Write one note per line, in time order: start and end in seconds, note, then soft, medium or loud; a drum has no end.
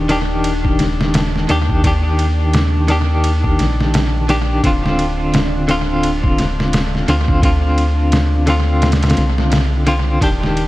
0.00 1.46 D#1 loud
0.00 10.68 D4 medium
0.09 1.46 D#3 medium
0.09 1.46 D4 medium
0.09 1.47 G4 medium
0.09 ride medium
0.44 ride medium
0.65 kick medium
0.79 snare medium
0.79 ride medium
1.01 snare medium
1.14 snare loud
1.14 ride medium
1.36 snare soft
1.49 3.56 D#2 medium
1.49 1.81 D#3 medium
1.49 1.81 D4 medium
1.49 1.82 G4 loud
1.49 ride medium
1.69 kick loud
1.84 2.85 D#3 medium
1.84 2.86 D4 medium
1.84 2.87 G4 medium
1.84 kick loud
1.84 ride medium
2.19 ride medium
2.53 snare loud
2.53 ride medium
2.88 4.25 D#3 medium
2.88 4.26 D4 medium
2.88 4.26 G4 loud
2.88 ride medium
3.24 ride medium
3.44 kick medium
3.59 4.61 A#1 medium
3.59 snare medium
3.59 ride medium
3.81 snare soft
3.94 snare loud
3.94 ride loud
4.29 4.60 D#3 medium
4.29 4.61 D4 medium
4.29 4.61 G4 loud
4.29 ride medium
4.63 7.05 D1 medium
4.63 5.65 D3 medium
4.63 5.65 C4 medium
4.63 5.66 F4 medium
4.63 kick loud
4.63 ride medium
4.86 snare soft
4.99 ride medium
5.34 snare loud
5.34 ride medium
5.68 7.04 D3 medium
5.68 7.05 C4 medium
5.68 7.05 F4 loud
5.68 ride medium
6.03 ride medium
6.24 kick loud
6.38 snare medium
6.38 ride medium
6.60 snare medium
6.73 snare loud
6.73 ride loud
6.95 snare soft
7.08 9.14 D2 medium
7.08 7.39 D3 medium
7.08 7.40 C4 medium
7.08 7.40 F4 loud
7.08 ride medium
7.28 kick loud
7.42 8.43 D3 medium
7.42 8.44 C4 medium
7.42 8.45 F4 medium
7.42 kick loud
7.42 ride medium
7.78 ride medium
8.12 snare loud
8.12 ride medium
8.47 9.83 D3 medium
8.47 9.84 C4 medium
8.47 9.85 F4 loud
8.47 ride medium
8.82 snare medium
8.82 ride medium
8.92 snare medium
8.92 ride medium
9.03 snare medium
9.03 ride medium
9.10 snare medium
9.10 ride medium
9.17 10.19 C2 medium
9.17 snare medium
9.17 ride medium
9.38 snare soft
9.52 snare loud
9.52 ride medium
9.87 10.18 D3 medium
9.87 10.19 C4 medium
9.87 10.19 F4 loud
9.87 ride medium
10.21 10.68 D#1 loud
10.21 10.68 D#3 medium
10.21 10.68 D4 medium
10.21 10.68 G4 medium
10.21 kick loud
10.21 ride medium
10.43 snare soft
10.57 ride medium